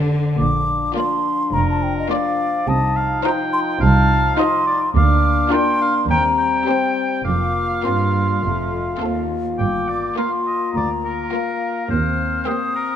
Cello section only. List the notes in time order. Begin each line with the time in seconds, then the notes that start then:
Already playing: D3
0.37 A#2
1.52 F2
2.68 C3
3.81 C3
4.95 D2
6.10 D#2
7.26 F2
7.85 G2
8.43 F2
9.01 D#2
9.59 G2
10.75 D2
11.89 D#2